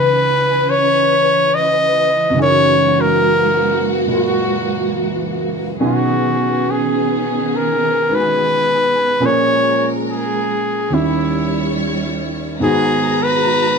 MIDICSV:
0, 0, Header, 1, 4, 480
1, 0, Start_track
1, 0, Tempo, 857143
1, 1319, Time_signature, 4, 2, 24, 8
1, 4203, Tempo, 848656
1, 7755, End_track
2, 0, Start_track
2, 0, Title_t, "Trumpet"
2, 0, Program_c, 0, 56
2, 0, Note_on_c, 0, 71, 87
2, 391, Note_on_c, 0, 73, 92
2, 400, Note_off_c, 0, 71, 0
2, 865, Note_on_c, 0, 75, 94
2, 874, Note_off_c, 0, 73, 0
2, 1332, Note_off_c, 0, 75, 0
2, 1357, Note_on_c, 0, 73, 91
2, 1686, Note_on_c, 0, 70, 89
2, 1694, Note_off_c, 0, 73, 0
2, 2200, Note_off_c, 0, 70, 0
2, 2322, Note_on_c, 0, 66, 63
2, 2759, Note_off_c, 0, 66, 0
2, 3279, Note_on_c, 0, 66, 71
2, 3758, Note_on_c, 0, 68, 62
2, 3766, Note_off_c, 0, 66, 0
2, 4236, Note_on_c, 0, 70, 81
2, 4244, Note_off_c, 0, 68, 0
2, 4569, Note_on_c, 0, 71, 87
2, 4578, Note_off_c, 0, 70, 0
2, 5195, Note_on_c, 0, 73, 91
2, 5204, Note_off_c, 0, 71, 0
2, 5566, Note_off_c, 0, 73, 0
2, 5673, Note_on_c, 0, 68, 69
2, 6147, Note_on_c, 0, 64, 75
2, 6156, Note_off_c, 0, 68, 0
2, 6613, Note_off_c, 0, 64, 0
2, 7104, Note_on_c, 0, 68, 88
2, 7442, Note_on_c, 0, 71, 91
2, 7451, Note_off_c, 0, 68, 0
2, 7755, Note_off_c, 0, 71, 0
2, 7755, End_track
3, 0, Start_track
3, 0, Title_t, "String section"
3, 0, Program_c, 1, 48
3, 0, Note_on_c, 1, 52, 66
3, 0, Note_on_c, 1, 61, 61
3, 0, Note_on_c, 1, 71, 75
3, 1301, Note_off_c, 1, 61, 0
3, 1303, Note_off_c, 1, 71, 0
3, 1315, Note_on_c, 1, 66, 82
3, 1317, Note_on_c, 1, 58, 61
3, 1320, Note_on_c, 1, 56, 63
3, 3219, Note_off_c, 1, 66, 0
3, 3220, Note_off_c, 1, 52, 0
3, 3220, Note_off_c, 1, 58, 0
3, 3222, Note_off_c, 1, 56, 0
3, 3244, Note_on_c, 1, 61, 57
3, 3245, Note_on_c, 1, 68, 66
3, 3246, Note_on_c, 1, 51, 62
3, 3247, Note_on_c, 1, 59, 62
3, 5146, Note_off_c, 1, 61, 0
3, 5147, Note_off_c, 1, 68, 0
3, 5148, Note_off_c, 1, 51, 0
3, 5148, Note_off_c, 1, 59, 0
3, 5166, Note_on_c, 1, 56, 61
3, 5167, Note_on_c, 1, 70, 67
3, 6113, Note_off_c, 1, 56, 0
3, 6114, Note_off_c, 1, 70, 0
3, 6127, Note_on_c, 1, 64, 55
3, 6127, Note_on_c, 1, 73, 75
3, 6129, Note_on_c, 1, 55, 68
3, 7074, Note_off_c, 1, 55, 0
3, 7074, Note_off_c, 1, 64, 0
3, 7074, Note_off_c, 1, 73, 0
3, 7085, Note_on_c, 1, 82, 84
3, 7086, Note_on_c, 1, 66, 68
3, 7087, Note_on_c, 1, 47, 66
3, 7088, Note_on_c, 1, 56, 71
3, 7755, Note_off_c, 1, 47, 0
3, 7755, Note_off_c, 1, 56, 0
3, 7755, Note_off_c, 1, 66, 0
3, 7755, Note_off_c, 1, 82, 0
3, 7755, End_track
4, 0, Start_track
4, 0, Title_t, "Grand piano"
4, 0, Program_c, 2, 0
4, 0, Control_c, 2, 64, 127
4, 0, Note_on_c, 2, 37, 46
4, 0, Note_on_c, 2, 49, 47
4, 0, Note_on_c, 2, 52, 42
4, 0, Note_on_c, 2, 63, 41
4, 0, Note_on_c, 2, 71, 54
4, 1288, Note_on_c, 2, 42, 56
4, 1296, Note_off_c, 2, 49, 0
4, 1304, Note_on_c, 2, 49, 48
4, 1308, Note_off_c, 2, 52, 0
4, 1310, Note_off_c, 2, 37, 0
4, 1316, Note_on_c, 2, 52, 53
4, 1319, Note_off_c, 2, 63, 0
4, 1325, Note_off_c, 2, 71, 0
4, 1326, Control_c, 2, 64, 0
4, 1327, Note_on_c, 2, 63, 47
4, 1339, Note_on_c, 2, 68, 51
4, 1352, Note_on_c, 2, 70, 58
4, 1420, Control_c, 2, 64, 127
4, 2276, Note_on_c, 2, 46, 34
4, 2281, Note_on_c, 2, 54, 32
4, 2289, Note_off_c, 2, 70, 0
4, 2290, Note_on_c, 2, 64, 33
4, 2297, Note_on_c, 2, 70, 38
4, 3225, Note_off_c, 2, 42, 0
4, 3233, Note_off_c, 2, 49, 0
4, 3239, Note_off_c, 2, 52, 0
4, 3239, Note_off_c, 2, 54, 0
4, 3241, Note_off_c, 2, 46, 0
4, 3241, Note_off_c, 2, 63, 0
4, 3247, Note_off_c, 2, 68, 0
4, 3247, Control_c, 2, 64, 0
4, 3247, Note_on_c, 2, 47, 55
4, 3247, Note_on_c, 2, 54, 47
4, 3248, Note_off_c, 2, 64, 0
4, 3250, Note_on_c, 2, 63, 49
4, 3251, Note_on_c, 2, 61, 51
4, 3252, Note_off_c, 2, 70, 0
4, 3255, Note_on_c, 2, 68, 56
4, 3348, Control_c, 2, 64, 127
4, 4531, Note_off_c, 2, 63, 0
4, 4534, Note_on_c, 2, 56, 34
4, 4540, Note_on_c, 2, 63, 31
4, 4548, Note_on_c, 2, 66, 32
4, 4549, Note_on_c, 2, 71, 45
4, 5159, Note_off_c, 2, 61, 0
4, 5162, Note_on_c, 2, 46, 51
4, 5163, Note_off_c, 2, 56, 0
4, 5163, Note_off_c, 2, 68, 0
4, 5163, Note_on_c, 2, 53, 45
4, 5166, Note_off_c, 2, 63, 0
4, 5166, Note_on_c, 2, 58, 48
4, 5167, Note_off_c, 2, 47, 0
4, 5167, Note_off_c, 2, 54, 0
4, 5168, Note_on_c, 2, 61, 49
4, 5170, Note_off_c, 2, 66, 0
4, 5170, Control_c, 2, 64, 0
4, 5171, Note_off_c, 2, 71, 0
4, 5172, Note_on_c, 2, 68, 55
4, 5280, Control_c, 2, 64, 127
4, 6121, Note_off_c, 2, 46, 0
4, 6121, Note_off_c, 2, 53, 0
4, 6122, Note_on_c, 2, 39, 38
4, 6123, Note_off_c, 2, 58, 0
4, 6124, Note_off_c, 2, 61, 0
4, 6126, Note_off_c, 2, 68, 0
4, 6129, Control_c, 2, 64, 0
4, 6132, Note_on_c, 2, 51, 37
4, 6138, Note_on_c, 2, 61, 37
4, 6144, Note_on_c, 2, 64, 37
4, 6154, Note_on_c, 2, 67, 44
4, 6212, Control_c, 2, 64, 127
4, 7081, Note_off_c, 2, 39, 0
4, 7083, Note_off_c, 2, 51, 0
4, 7084, Note_on_c, 2, 44, 56
4, 7088, Note_off_c, 2, 61, 0
4, 7088, Control_c, 2, 64, 0
4, 7091, Note_on_c, 2, 51, 54
4, 7092, Note_off_c, 2, 64, 0
4, 7095, Note_on_c, 2, 59, 51
4, 7097, Note_off_c, 2, 67, 0
4, 7105, Note_on_c, 2, 66, 52
4, 7190, Control_c, 2, 64, 127
4, 7755, Note_off_c, 2, 44, 0
4, 7755, Note_off_c, 2, 51, 0
4, 7755, Note_off_c, 2, 59, 0
4, 7755, Note_off_c, 2, 66, 0
4, 7755, End_track
0, 0, End_of_file